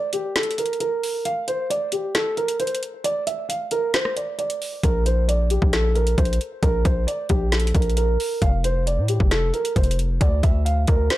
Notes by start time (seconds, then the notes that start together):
0.13 G4, closed hi-hat
0.36 A4, snare, closed hi-hat
0.43 closed hi-hat
0.51 closed hi-hat
0.58 A#4, closed hi-hat
0.66 closed hi-hat
0.73 closed hi-hat
0.80 A#4, closed hi-hat
1.03 open hi-hat
1.25 F5, closed hi-hat
1.48 C5, closed hi-hat
1.70 D5, closed hi-hat
1.92 G4, closed hi-hat
2.15 A4, snare, closed hi-hat
2.37 A#4, closed hi-hat
2.48 closed hi-hat
2.60 C5, closed hi-hat
2.67 closed hi-hat
2.75 closed hi-hat
2.83 closed hi-hat
3.04 D5, closed hi-hat
3.27 E5, closed hi-hat
3.49 F5, closed hi-hat
3.71 A#4, closed hi-hat
3.94 C5, snare, closed hi-hat
4.05 cross-stick
4.16 D5, closed hi-hat
4.38 D5, closed hi-hat
4.50 closed hi-hat
4.62 open hi-hat
4.83 A#1 A#4, kick, closed hi-hat
5.06 C5, closed hi-hat
5.28 D5, closed hi-hat
5.50 G4, closed hi-hat
5.62 A#1, kick
5.73 A4, snare, closed hi-hat
5.95 A#4, closed hi-hat
6.07 closed hi-hat
6.18 A#1 C5, kick, closed hi-hat
6.25 closed hi-hat
6.33 closed hi-hat
6.41 closed hi-hat
6.63 A#1 A#4, kick, closed hi-hat
6.85 A#1 C5, kick, closed hi-hat
7.07 D5, closed hi-hat
7.29 A#1 G4, kick, closed hi-hat
7.52 A4, snare, closed hi-hat
7.60 closed hi-hat
7.67 closed hi-hat
7.75 A#1 A#4, kick, closed hi-hat
7.82 closed hi-hat
7.90 closed hi-hat
7.97 A#4, closed hi-hat
8.20 open hi-hat
8.42 F1 F5, kick, closed hi-hat
8.64 C5, closed hi-hat
8.87 D5, closed hi-hat
8.98 A2
9.08 G4, closed hi-hat
9.20 F1, kick
9.31 A4, snare, closed hi-hat
9.54 A#4, closed hi-hat
9.65 closed hi-hat
9.76 F1 C5, kick, closed hi-hat
9.84 closed hi-hat
9.91 closed hi-hat
9.99 closed hi-hat
10.21 D2 D5, kick, closed hi-hat
10.43 D2 E5, kick, closed hi-hat
10.65 F5, closed hi-hat
10.87 D2 A#4, kick, closed hi-hat
11.10 C5, snare, closed hi-hat